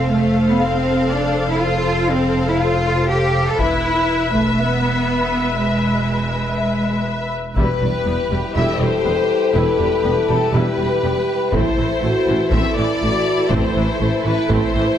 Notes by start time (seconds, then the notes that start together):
Already playing: F1 C4 A4 C5 F5
0.12 A3
0.49 B3
0.60 C4 A4 F5
1.11 D4
1.49 E4
1.60 F4 A4 F5
2.11 C4
2.49 E4
2.59 F4 A4 F5
3.10 G4
3.48 A4
3.58 E1 E4 B4 E5, taiko
4.34 A3, taiko
4.58 B3 B4 E5
5.57 G#3 B4 E5
6.57 B4 E5
7.56 E1 E2 G3 E4 G4 B4, taiko
7.81 E1 E2 G3
8.06 E1 E2 G3 B3
8.31 E1 E2 G3
8.54 E1 E2 G3 E4 A4 E5
8.80 E1 E2 G3 C5
9.05 E1 E2 G3 B3
9.54 E1 E2 G3 E4 B4
9.78 E1 E2 G3
10.03 E1 E2 G3 B3
10.28 E1 E2 G3 A4
10.52 E1 E2 G3 E4 G4 B4
10.78 E1 E2 G3
11.03 E1 E2 G3 B3
11.52 A1 A2 E3 A3 C4 E4 A4 C5, taiko
11.77 A1 A2 E3 A3
12.01 A1 A2 A3 F#4
12.27 A1 A2 E3 A3
12.51 A1 A2 A3 C4 E4 E5, taiko
12.76 A1 A2 E3 A3 D5
13.01 A1 A2 A3 F#4
13.51 A1 A2 A3 C4 E4 C5, taiko
13.75 A1 A2 E3 A3
14.00 A1 A2 A3 E4
14.25 A1 A2 E3 A3 B4
14.49 A1 A2 A3 C4 C5, taiko
14.75 A1 A2 E3 A3